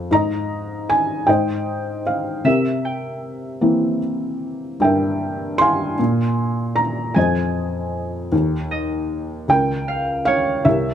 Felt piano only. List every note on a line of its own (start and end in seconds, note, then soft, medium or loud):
0.00 0.13 F2 medium
0.11 1.24 G#2 medium
0.11 1.26 D#5 medium
0.11 0.92 A#5 medium
0.90 1.25 G#5 medium
1.27 2.41 G#2 medium
1.27 2.41 C5 medium
1.27 2.42 D#5 medium
1.27 2.01 G5 medium
2.07 2.46 F5 medium
2.44 4.76 C3 medium
2.44 3.99 G4 soft
2.44 3.98 A#4 medium
2.44 3.98 E5 medium
3.61 5.95 E3 medium
3.61 5.94 A#3 soft
3.61 5.94 C4 soft
4.80 5.95 G2 medium
4.80 5.62 G5 medium
4.84 5.97 A#4 soft
4.84 5.97 E5 medium
5.58 6.74 F5 medium
5.58 6.74 G#5 medium
5.58 6.80 C6 medium
5.99 7.13 A#2 medium
6.76 7.16 A#5 medium
7.14 8.29 F2 medium
7.14 8.29 C5 soft
7.14 8.29 D#5 medium
7.14 8.28 G#5 medium
8.32 9.45 D#2 medium
9.48 10.62 C#2 medium
9.48 10.63 A#4 medium
9.48 10.23 G5 medium
10.25 10.66 F5 loud
10.65 10.94 C2 medium
10.65 10.94 G4 medium
10.65 10.94 A#4 medium
10.65 10.94 E5 medium